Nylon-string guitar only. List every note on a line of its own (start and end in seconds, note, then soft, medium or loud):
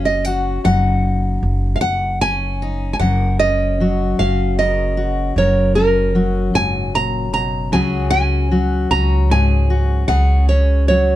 0.05 0.25 D#5 medium
0.25 0.64 F#5 loud
0.65 1.75 F#5 medium
1.76 1.81 F5 medium
1.81 2.21 F#5 medium
2.21 2.92 G#5 medium
2.93 2.99 G#5 medium
2.99 3.39 F#5 medium
3.39 4.19 D#5 medium
4.19 4.58 F5 medium
4.59 5.33 D#5 medium
5.38 5.75 C#5 medium
5.75 6.57 A#4 medium
6.55 6.95 G#5 loud
6.95 7.32 A#5 loud
7.34 7.72 A#5 medium
7.73 8.09 G#5 medium
8.10 8.90 G#5 medium
8.91 9.31 A#5 loud
9.31 10.07 G#5 medium
10.08 10.45 F#5 medium
10.49 10.85 C#5 medium
10.88 11.16 C#5 medium